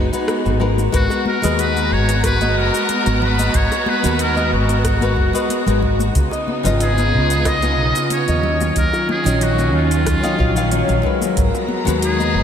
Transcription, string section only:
Already playing: G#3 B3 D#4
0.92 G#3 B3 F#4 A#5
6.16 C#3 B3 D#4
8.44 D#3 F#3 C#4
11.37 G#3 B3 A#5

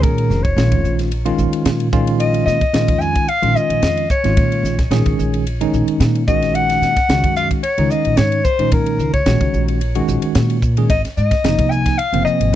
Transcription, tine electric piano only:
Already playing: D#3 G#3 C#4 G#4
0.57 D#3 G#3 C#4 F4
1.26 D#3 G#3 C#4 F4
1.93 D#3 G#3 C#4 F4
2.74 D#3 G#3 C#4 F4
3.42 D#3 G#3 C#4 F4
4.25 D#3 G#3 C#4 F4
4.92 D#3 G#3 C#4 G#4
5.61 D#3 G#3 C#4 D#4
6.28 D#3 G#3 C#4 F#4
7.10 D#3 G#3 C#4 F#4
7.78 D#3 G#3 C#4 D#4
8.60 D#3 G#3 C#4 D#4
9.27 D#3 G#3 C#4 F#4
9.95 D#3 G#3 C#4 F#4
10.78 D#3 G#3 C#4 G#4
11.45 C3 F3 A#3 D#4
12.13 C3 F3 A#3 C4

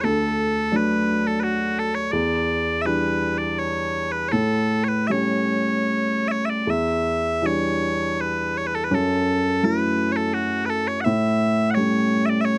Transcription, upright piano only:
0.04 D2
0.72 F#3 A3 D4
2.13 E2
2.85 E3 G3 D4
4.33 A2
5.10 G3 A3 C#4
6.67 E2
7.42 E3 G3 D4
8.91 F#2
9.63 F#3 A3 E4
11.06 A2
11.77 G3 A3 C#4

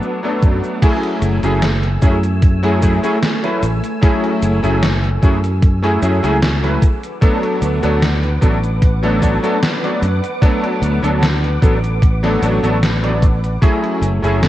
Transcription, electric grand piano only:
Already playing: F#3 A3 B3 D4 A4
0.23 F#3 A3 B3 D4 A4
0.82 F#3 A3 C#4 E4 G#4
1.43 F#3 A3 C#4 E4 G#4
2.02 F#3 A3 C#4 E4 G#4
2.63 F#3 A3 C#4 E4 G#4
2.81 F#3 A3 C#4 E4 G#4
3.03 F#3 A3 C#4 E4 G#4
3.42 F#3 A3 C#4 E4 B4
4.01 F#3 A3 C#4 E4 G#4
4.62 F#3 A3 C#4 E4 G#4
5.22 F#3 A3 C#4 E4 G#4
5.83 F#3 A3 C#4 E4 G#4
6.02 F#3 A3 C#4 E4 G#4
6.23 F#3 A3 C#4 E4 G#4
6.63 F#3 A3 C#4 E4 B4
7.21 F#3 A3 B3 D4 A4
7.83 F#3 A3 B3 D4 A4
8.41 F#3 A3 B3 D4 A4
9.03 F#3 A3 B3 D4 A4
9.22 F#3 A3 B3 D4 A4
9.43 F#3 A3 B3 D4 A4
9.83 F#3 A3 B3 D4 D5
10.42 F#3 A3 B3 D4 A4
11.03 F#3 A3 B3 D4 A4
11.62 F#3 A3 B3 D4 A4
12.23 F#3 A3 B3 D4 A4
12.42 F#3 A3 B3 D4 A4
12.63 F#3 A3 B3 D4 A4
13.03 F#3 A3 B3 D4 D5
13.62 F#3 A3 C#4 E4 G#4
14.22 F#3 A3 C#4 E4 G#4

